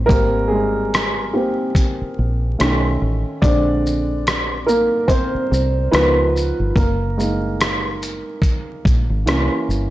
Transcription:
Already playing: upright piano G3 G#3 C4 D#4 C5
0.06 fingered electric bass G#1, upright piano G3 A#3 C4 A#4, kick
0.10 closed hi-hat
0.48 upright piano G#3 G#4
0.94 cross-stick, closed hi-hat
1.33 upright piano A#3 C4 G4
1.75 kick, closed hi-hat
2.01 muted fingered electric bass stroke
2.19 fingered electric bass A#1
2.58 fingered electric bass B1, upright piano D#3 A3 C#4, cross-stick, closed hi-hat
3.02 fingered electric bass A1
3.42 fingered electric bass A#1, upright piano D3 G#3 C4 D4 D5, kick, closed hi-hat
3.87 shaker
4.27 cross-stick, closed hi-hat
4.66 upright piano A#3 A#4, shaker
5.08 upright piano C4 C5, kick, closed hi-hat
5.35 muted fingered electric bass stroke
5.52 fingered electric bass C2, shaker
5.92 fingered electric bass C#2, upright piano F3 B3 D#4 A#4 B4, cross-stick, closed hi-hat
6.37 shaker
6.60 fingered electric bass G1
6.75 fingered electric bass F#1, upright piano A#3 A#4, kick, closed hi-hat
7.17 upright piano G#3 A#3 D#4, shaker
7.61 cross-stick, closed hi-hat
8.03 closed hi-hat, shaker
8.42 kick, closed hi-hat
8.85 fingered electric bass A#1, kick, closed hi-hat, shaker
9.10 fingered electric bass G#1
9.26 fingered electric bass C2, upright piano E3 A#3 C#4, cross-stick, closed hi-hat
9.69 fingered electric bass G1, shaker

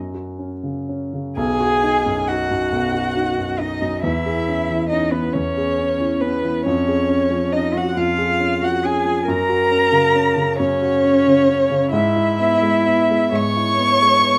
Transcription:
Already playing: grand piano F#2
0.14 grand piano F#4
0.39 grand piano C#4
0.63 grand piano C#3
0.89 grand piano C#4
1.14 grand piano C#3
1.36 grand piano B1, cello G#4, violin G#5
1.60 grand piano F#4
1.83 grand piano D#4
2.06 grand piano F#2
2.27 grand piano D#4, cello F#4, violin F#5
2.51 grand piano F#2
2.72 grand piano B1
2.94 grand piano F#4
3.17 grand piano D#4
3.38 grand piano F#2
3.58 grand piano D#4, cello D#4, violin D#5
3.82 grand piano F#2
4.02 grand piano E2, cello E4, violin E5
4.26 grand piano G#4
4.48 grand piano C#4
4.70 grand piano E3
4.89 grand piano C#4, cello D#4, violin D#5
5.11 grand piano E3, cello B3, violin B4
5.32 grand piano E2, cello C#4, violin C#5
5.57 grand piano G#4
5.78 grand piano C#4
6.00 grand piano E3
6.21 cello B3, grand piano C#4, violin B4
6.44 grand piano E3
6.65 grand piano F2, cello C#4, violin C#5
6.88 grand piano G#4
7.09 grand piano C#4
7.30 grand piano F3
7.52 grand piano C#4, cello D#4, violin D#5
7.73 grand piano F3, cello F#4, violin F#5
7.96 grand piano F2, cello F4, violin F5
8.18 grand piano G#4
8.40 grand piano C#4
8.62 grand piano F3, cello F#4, violin F#5
8.83 grand piano C#4, cello G#4, violin G#5
9.05 grand piano F3
9.26 grand piano F#2, cello A#4, violin A#5
9.49 grand piano F#4
9.71 grand piano C#4
9.92 grand piano C#3
10.15 grand piano C#4
10.37 grand piano C#3
10.58 grand piano F#2, cello C#4, violin C#5
10.82 grand piano F#4
11.04 grand piano C#4
11.27 grand piano C#3
11.48 grand piano C#4
11.71 grand piano C#3
11.91 grand piano G#2, cello E4, violin E5
12.15 grand piano E4
12.39 grand piano B3
12.62 grand piano G#3
12.86 grand piano B3
13.10 grand piano G#3
13.32 grand piano G#2, cello C#5, violin C#6
13.56 grand piano E4
13.78 grand piano B3
14.01 grand piano G#3
14.22 grand piano B3

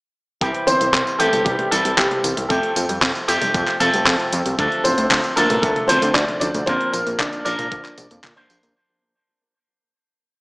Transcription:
0.41 analog synth bass C2, synth arpeggio sound C3, clean electric guitar E3 G3 C4 G4, kick, closed hi-hat, tambourine
0.54 closed hi-hat
0.67 analog synth bass G1, synth arpeggio sound E3, grand piano C4 C5, closed hi-hat, tambourine
0.81 analog synth bass C2, synth arpeggio sound G3, closed hi-hat, tambourine
0.94 analog synth bass C2, synth arpeggio sound C3, kick, clap, closed hi-hat, tambourine
1.07 closed hi-hat, tambourine
1.18 analog synth bass C2, synth arpeggio sound E3, clean electric guitar E3 G3 C4 G4, grand piano A3 A4, closed hi-hat, tambourine
1.33 analog synth bass G1, synth arpeggio sound G3, closed hi-hat, high tom, tambourine
1.45 analog synth bass C2, synth arpeggio sound C3, grand piano G3 G4, kick, closed hi-hat, tambourine
1.59 closed hi-hat, high tom
1.71 analog synth bass C2, synth arpeggio sound E3, clean electric guitar E3 G3 C4 A4, closed hi-hat, tambourine
1.85 analog synth bass C2, synth arpeggio sound G3, closed hi-hat, tambourine
1.97 analog synth bass C2, synth arpeggio sound C3, grand piano G3 G4, kick, clap, closed hi-hat, tambourine
2.11 closed hi-hat, high tom
2.24 analog synth bass C2, synth arpeggio sound E3, closed hi-hat, tambourine
2.37 analog synth bass C2, synth arpeggio sound G3, closed hi-hat, high tom, tambourine
2.49 analog synth bass F2, synth arpeggio sound C3, clean electric guitar F3 A3 C4 G4, grand piano A3 A4, kick, closed hi-hat, tambourine
2.63 closed hi-hat
2.76 analog synth bass F2, synth arpeggio sound F3, closed hi-hat, tambourine
2.89 analog synth bass F2, synth arpeggio sound G3, closed hi-hat, tambourine
3.02 analog synth bass F2, synth arpeggio sound C3, kick, clap, closed hi-hat, tambourine
3.15 closed hi-hat, tambourine
3.28 analog synth bass F2, synth arpeggio sound F3, clean electric guitar F3 A3 C4 G4, closed hi-hat, tambourine
3.42 analog synth bass F1, synth arpeggio sound G3, closed hi-hat, high tom, tambourine
3.54 analog synth bass F2, synth arpeggio sound C3, kick, closed hi-hat, tambourine
3.67 clap, closed hi-hat
3.80 analog synth bass F2, synth arpeggio sound F3, clean electric guitar F3 A3 C4 A4, closed hi-hat, high tom, tambourine
3.94 analog synth bass F1, synth arpeggio sound G3, closed hi-hat, tambourine
4.06 analog synth bass F2, synth arpeggio sound C3, kick, clap, closed hi-hat, high tom, tambourine
4.20 closed hi-hat
4.33 analog synth bass F2, synth arpeggio sound F3, closed hi-hat, tambourine
4.46 analog synth bass C2, synth arpeggio sound G3, closed hi-hat, tambourine
4.58 analog synth bass D2, synth arpeggio sound D3, clean electric guitar F3 A3 D4 A4, kick, closed hi-hat, tambourine
4.72 closed hi-hat
4.84 analog synth bass D1, synth arpeggio sound F3, grand piano C4 C5, closed hi-hat, tambourine
4.98 analog synth bass D2, synth arpeggio sound A3, closed hi-hat, tambourine
5.11 analog synth bass D2, synth arpeggio sound D3, kick, clap, closed hi-hat, tambourine
5.24 closed hi-hat, tambourine
5.36 analog synth bass D2, synth arpeggio sound F3, clean electric guitar F3 A3 D4 A4, grand piano A#3 A#4, closed hi-hat, tambourine
5.50 analog synth bass A1, synth arpeggio sound A3, closed hi-hat, high tom, tambourine
5.62 analog synth bass D2, synth arpeggio sound D3, grand piano A3 A4, kick, closed hi-hat, tambourine
5.76 closed hi-hat, high tom
5.88 analog synth bass D2, synth arpeggio sound F3, clean electric guitar F3 A3 D4 C5, grand piano C4 C5, closed hi-hat, tambourine
6.02 analog synth bass D2, synth arpeggio sound A3, closed hi-hat, tambourine
6.14 analog synth bass D2, synth arpeggio sound D3, grand piano D4 D5, kick, clap, closed hi-hat, tambourine
6.28 closed hi-hat, high tom
6.40 analog synth bass D2, synth arpeggio sound F3, grand piano D4 D5, closed hi-hat, tambourine
6.54 analog synth bass D2, synth arpeggio sound A3, closed hi-hat, high tom, tambourine
6.66 analog synth bass A#1, clean electric guitar A#2 F3 A#3 D4 A#4, synth arpeggio sound D3, grand piano C4 C5, kick, closed hi-hat, tambourine
6.81 closed hi-hat
6.92 analog synth bass A#1, synth arpeggio sound F3, grand piano A#3 A#4, closed hi-hat, tambourine
7.07 analog synth bass A#1, synth arpeggio sound A#3, closed hi-hat, tambourine
7.18 analog synth bass A#1, synth arpeggio sound D3, grand piano D4 D5, kick, clap, closed hi-hat, tambourine
7.33 closed hi-hat, tambourine
7.45 analog synth bass A#1, clean electric guitar A#2 F3 A#3 D4 A#4, synth arpeggio sound F3, grand piano D4 D5, closed hi-hat, tambourine
7.59 analog synth bass A#2, synth arpeggio sound A#3, closed hi-hat, high tom, tambourine
7.72 analog synth bass A#1, synth arpeggio sound D3, kick, closed hi-hat, tambourine
7.85 clap, closed hi-hat, tambourine
7.98 analog synth bass A#1, synth arpeggio sound F3, closed hi-hat, high tom, tambourine
8.11 analog synth bass F2, synth arpeggio sound A#3, closed hi-hat, tambourine
8.24 analog synth bass A#2, synth arpeggio sound D3, kick, clap, closed hi-hat, high tom, tambourine
8.36 clean electric guitar A#2 F3 A#3 D4 C5, closed hi-hat
8.50 analog synth bass A#1, synth arpeggio sound F3, closed hi-hat, tambourine
8.63 analog synth bass A#1, synth arpeggio sound A#3, closed hi-hat, tambourine

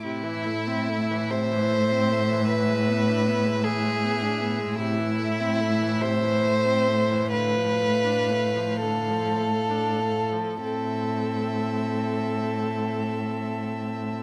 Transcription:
0.03 cello A2, viola C3, violin E4 E5
0.23 viola E3
0.45 viola A3
0.67 viola C4
0.89 viola A3
1.10 viola E3
1.30 viola C3, violin C5
1.51 viola E3
1.71 viola A3
1.91 viola C4
2.11 viola A3
2.31 viola E3
2.49 viola E3, violin B4
2.70 viola G#3
2.88 viola B3
3.09 viola D4
3.28 viola B3
3.46 viola G#3
3.64 viola E3, violin G#4
3.85 viola G#3
4.04 viola B3
4.22 viola D4
4.41 viola B3
4.60 viola G#3
4.78 cello A2, viola C3, violin E4 E5
4.99 viola E3
5.19 viola A3
5.40 viola C4
5.61 viola A3
5.82 viola E3
6.02 viola C3, violin C5
6.23 viola E3
6.43 viola A3
6.66 viola C4
6.88 viola A3
7.11 viola E3
7.32 viola D3, violin B4 F5
7.57 viola F3
7.81 viola A3
8.05 viola D4
8.30 viola A3
8.56 viola F3
8.81 viola D3, violin A4
9.10 viola F3
9.40 viola A3
9.70 viola D4
10.00 viola A3
10.32 viola F3
10.60 cello A2, viola C4, violin A4 E5

